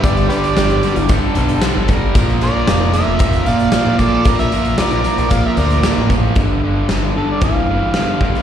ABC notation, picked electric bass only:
X:1
M:4/4
L:1/16
Q:1/4=114
K:Glyd
V:1 name="Picked electric bass" clef=bass
G,,,2 z2 G,,,2 z G,,,2 z B,,,2 z G,,,3 | _B,,,2 z2 =F,,,3 F,,,3 _B,,2 z B,,3 | _B,,,2 z2 B,,,2 z B,,,2 z D,,2 z A,,,3 | G,,,4 G,,,2 z2 G,,, G,,,2 z4 z |]